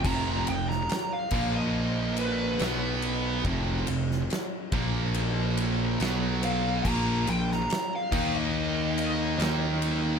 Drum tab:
CC |x-----x---------|----------------|x-----x---------|
RD |--x-x-----x-x-x-|x-x-x-x-x-x-x-x-|--x-x-----x-x-x-|
SD |---oo-------o---|---oo-------o---|---oo-------o---|
BD |o-----o---------|o-----o---------|o-----o---------|